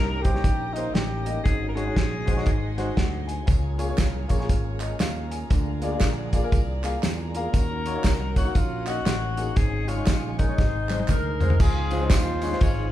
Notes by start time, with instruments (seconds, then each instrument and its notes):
Already playing: fingered electric bass C2, grand piano G2, tonewheel organ G3 A#3 C#4 D#4 G4, tenor saxophone A#4, string section D#5 G5 A#5
0.22 grand piano A#3 D#4 G4 C5, tenor saxophone G4, kick, closed hi-hat
0.33 grand piano A#3 D#4 G4 C#5, snare
0.44 fingered electric bass A#1, kick, closed hi-hat
0.73 grand piano A#3 D#4 G4 C5, tenor saxophone D#4, closed hi-hat
0.94 fingered electric bass A1, tenor saxophone G4, snare, closed hi-hat
1.25 grand piano A#3 D#4 G4 D#5, closed hi-hat
1.44 fingered electric bass G#1, grand piano G#2, tonewheel organ F#3 G#3 F#4, tenor saxophone G#4, string section F#5 G#5, kick, closed hi-hat
1.68 tenor saxophone A#4
1.75 grand piano G#3 D#4 F#4 C#5, tenor saxophone G#4, closed hi-hat
1.85 grand piano G#3 D#4 F#4 C#5
1.96 fingered electric bass A#1, kick, snare, closed hi-hat
2.25 grand piano G#3 D#4 F#4 C5, kick, closed hi-hat
2.35 grand piano G#3 D#4 F#4 C#5, snare
2.46 fingered electric bass G#1, grand piano G#2, tonewheel organ C4, string section C6, kick, closed hi-hat
2.77 grand piano G#3 D#4 F#4 C5, snare, closed hi-hat
2.96 fingered electric bass D2, grand piano F#5, kick, snare, closed hi-hat
3.27 grand piano G#5, closed hi-hat
3.46 fingered electric bass C#2, grand piano C#3, tonewheel organ A#3 C#4 F4 G#4, string section C#5 F5 A#5, kick, closed hi-hat, tambourine
3.78 grand piano A#3 F4 G#4 C#5, closed hi-hat, tambourine
3.88 grand piano A#3 F4 G#4 C#5
3.98 fingered electric bass C2, kick, snare, clap, closed hi-hat, tambourine
4.28 fingered electric bass A#1, grand piano A#3 F4 G#4 C#5, kick, closed hi-hat, tambourine
4.38 grand piano A#3 F4 G#4 C#5, snare
4.49 fingered electric bass G#1, kick, closed hi-hat, tambourine
4.80 grand piano D#5, clap, closed hi-hat, tambourine
5.00 fingered electric bass D#2, grand piano F5, snare, clap, closed hi-hat, tambourine
5.31 grand piano G#5, closed hi-hat, tambourine
5.49 fingered electric bass D2, grand piano D3, tonewheel organ D4, string section D5 G#5, kick, closed hi-hat, tambourine
5.82 grand piano A#3 F4 G#4 D5, closed hi-hat, tambourine
5.91 grand piano A#3 F4 G#4 D5
6.00 fingered electric bass A#1, kick, snare, clap, closed hi-hat, tambourine
6.33 grand piano A#3 F4 G#4 D5, kick, closed hi-hat, tambourine
6.43 grand piano A#3 F4 G#4 A#4
6.52 fingered electric bass C2, kick, closed hi-hat, tambourine
6.83 grand piano A#3 F4 G#4 F5, clap, closed hi-hat, tambourine
7.03 fingered electric bass E2, snare, clap, closed hi-hat, tambourine
7.35 grand piano A#3 F4 G#4 F5, tenor saxophone A#4, closed hi-hat, tambourine
7.52 fingered electric bass D#2, grand piano D#3, tonewheel organ F#3 C#4 F#4, string section C#5 D#5 F#5, kick, closed hi-hat, tambourine
7.86 grand piano A#3 D#4 F#4 C#5, closed hi-hat, tambourine
7.94 grand piano A#3 D#4 F#4 C#5
8.04 fingered electric bass C2, kick, snare, clap, closed hi-hat, tambourine
8.36 grand piano A#3 D#4 F#4 C#5, tenor saxophone F#4, kick, closed hi-hat, tambourine
8.44 grand piano A#3 D#4 F#4 A#4
8.55 fingered electric bass A#1, tenor saxophone F4, kick, closed hi-hat, tambourine
8.86 grand piano A#3 D#4 F#4 D#5, tenor saxophone F#4, clap, closed hi-hat, tambourine
9.06 fingered electric bass A1, snare, clap, closed hi-hat, tambourine
9.36 grand piano A#3 D#4 F#4 G#4, closed hi-hat, tambourine
9.55 fingered electric bass G#1, grand piano G#2, tonewheel organ C#3 G#3 D#4 G#4, tenor saxophone G#4, string section G#5 C#6, kick, closed hi-hat, tambourine
9.87 grand piano G#3 C#4 D#4 C#5, tenor saxophone F4, closed hi-hat, tambourine
9.96 grand piano G#3 C#4 D#4 C#5
10.07 fingered electric bass A#1, kick, snare, clap, closed hi-hat, tambourine
10.38 grand piano G#3 C#4 D#4 A#4, tenor saxophone D#4, kick, closed hi-hat, tambourine
10.47 grand piano G#3 C#4 D#4 C#5
10.56 fingered electric bass G#1, grand piano G#2, tonewheel organ C3, string section C5 C6, kick, snare, tambourine
10.89 grand piano G#3 C4 D#4 C5, clap, high tom, tambourine
11.00 high tom
11.08 fingered electric bass D2, horn section D#4 A#4, kick, clap, mid tom, tambourine
11.41 grand piano G#3 C4 D#4 C5, floor tom, tambourine
11.50 floor tom
11.59 fingered electric bass C#2, grand piano C#3, tonewheel organ F3 C4 D#4 F4 G#4, horn section C4 F4 G#4, kick, crash, tambourine
11.91 grand piano G#3 C#4 D#4 F4 C5, ride, tambourine
11.99 grand piano G#3 C#4 D#4 F4 C5
12.10 fingered electric bass D#2, horn section D#4 F4 C5, kick, snare, clap, ride, tambourine
12.41 grand piano G#3 C#4 D#4 F4 C#5, ride, tambourine
12.51 grand piano G#3 C#4 D#4 F4 C5, snare
12.60 fingered electric bass G#1, horn section F4 G#4 C#5, kick, ride, tambourine